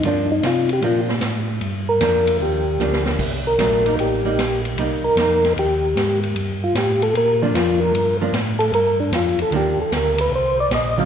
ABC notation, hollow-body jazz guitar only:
X:1
M:4/4
L:1/8
Q:"Swing" 1/4=152
K:Gm
V:1 name="Hollow-body jazz guitar"
[F,B,D] z3 [F,B,D] z3 | z2 [F,B,D]3 z [F,B,D]2 | z2 [^F,A,D] [G,B,E]2 [G,B,E] z2 | [G,B,E] z [G,B,E] z4 z |
z4 z [F,B,D]3 | z [F,B,D] z6 | [E,G,B,D] z6 [D,^F,C=F] |]